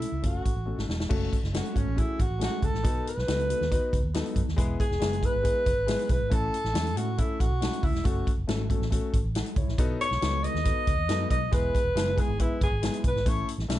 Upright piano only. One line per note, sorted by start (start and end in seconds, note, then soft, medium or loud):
0.22 0.47 A3 medium
0.22 0.47 C#4 medium
0.22 0.47 F#4 medium
0.22 0.48 A4 medium
0.66 0.91 A3 medium
0.66 0.91 C#4 medium
0.66 0.91 F#4 medium
0.66 0.91 A4 medium
1.09 1.34 A3 loud
1.09 1.34 C#4 medium
1.09 1.34 F#4 loud
1.09 1.35 A4 loud
1.52 1.65 A3 medium
1.52 1.65 C#4 medium
1.52 1.66 F#4 medium
1.52 1.66 A4 medium
1.73 1.87 A3 medium
1.73 1.87 C#4 medium
1.73 1.87 F#4 medium
1.73 1.87 A4 medium
1.96 2.21 A3 medium
1.96 2.21 C#4 medium
1.96 2.21 F#4 medium
1.96 2.22 G#4 medium
2.39 2.64 A3 medium
2.39 2.65 C#4 medium
2.39 2.65 F#4 medium
2.39 2.65 G#4 medium
2.83 3.08 B3 medium
2.83 3.08 D#4 medium
2.83 3.09 F#4 medium
2.83 3.09 A4 medium
3.27 3.39 B3 medium
3.27 3.40 D#4 medium
3.27 3.40 F#4 medium
3.27 3.40 A4 medium
3.49 3.62 B3 medium
3.49 3.62 D#4 medium
3.49 3.62 F#4 medium
3.49 3.62 A4 medium
3.71 3.95 B3 medium
3.71 3.96 D#4 medium
3.71 3.96 F#4 medium
3.71 3.96 B4 medium
4.14 4.39 B3 medium
4.14 4.39 D#4 medium
4.14 4.39 F#4 medium
4.14 4.39 A4 medium
4.57 4.82 G#3 loud
4.57 4.82 B3 loud
4.57 4.82 E4 medium
4.57 4.82 G#4 loud
4.99 5.13 G#3 medium
4.99 5.13 B3 medium
4.99 5.13 E4 medium
4.99 5.13 G#4 medium
5.20 5.34 G#3 medium
5.20 5.34 B3 medium
5.20 5.35 E4 medium
5.20 5.35 G#4 medium
5.42 5.68 G#3 medium
5.42 5.68 B3 medium
5.42 5.69 E4 medium
5.42 5.69 G#4 medium
5.86 6.12 G#3 medium
5.86 6.12 B3 medium
5.86 6.12 E4 medium
5.86 6.12 G#4 medium
6.30 6.55 A3 medium
6.30 6.55 C#4 medium
6.30 6.56 E4 medium
6.30 6.56 A4 loud
6.73 6.86 A3 medium
6.73 6.86 C#4 medium
6.73 6.87 E4 medium
6.73 6.87 A4 medium
6.97 7.09 A3 medium
6.97 7.09 C#4 medium
6.97 7.09 E4 medium
6.97 7.10 A4 medium
7.17 7.42 A3 medium
7.17 7.43 C#4 medium
7.17 7.43 E4 medium
7.17 7.43 A4 medium
7.61 7.86 A3 medium
7.61 7.86 C#4 medium
7.61 7.86 E4 medium
7.61 7.86 A4 medium
8.04 8.29 A3 medium
8.04 8.29 C#4 medium
8.04 8.30 F#4 medium
8.04 8.30 A4 loud
8.47 8.60 A3 medium
8.47 8.60 C#4 medium
8.47 8.61 F#4 medium
8.47 8.61 A4 loud
8.69 8.82 A3 medium
8.69 8.82 C#4 medium
8.69 8.82 F#4 medium
8.69 8.83 A4 medium
8.90 9.16 A3 medium
8.90 9.16 C#4 medium
8.90 9.16 F#4 medium
8.90 9.16 A4 medium
9.35 9.56 A4 medium
9.35 9.56 F#5 medium
9.57 9.99 E4 medium
9.57 9.98 C#5 medium
9.78 10.03 B3 loud
9.78 10.03 D#4 loud
9.78 10.03 F#4 loud
9.78 10.04 A4 loud
10.21 10.34 B3 medium
10.21 10.34 D#4 medium
10.21 10.34 F#4 medium
10.21 10.34 A4 medium
10.43 10.55 B3 medium
10.43 10.56 D#4 medium
10.43 10.56 F#4 medium
10.43 10.56 A4 medium
10.64 10.89 B3 medium
10.64 10.89 D#4 medium
10.64 10.90 F#4 medium
10.64 10.90 A4 medium
11.08 11.33 B3 medium
11.08 11.33 D#4 medium
11.08 11.33 F#4 medium
11.08 11.33 A4 medium
11.52 11.76 G#3 loud
11.52 11.76 B3 medium
11.52 11.77 E4 medium
11.52 11.77 G#4 loud
11.95 12.07 G#3 medium
11.95 12.08 B3 medium
11.95 12.08 E4 medium
11.95 12.08 G#4 medium
12.15 12.29 G#3 medium
12.15 12.29 B3 medium
12.15 12.29 E4 medium
12.15 12.30 G#4 medium
12.38 12.63 G#3 medium
12.38 12.63 B3 medium
12.38 12.64 E4 medium
12.38 12.64 B4 medium
12.82 13.06 G#3 medium
12.82 13.07 B3 medium
12.82 13.07 E4 medium
12.82 13.07 G#4 medium
13.25 13.50 A3 medium
13.25 13.50 C#4 medium
13.25 13.50 E4 medium
13.25 13.51 A4 loud
13.68 13.79 A3 medium
13.68 13.79 C#4 medium
13.68 13.79 E4 medium
13.68 13.79 A4 medium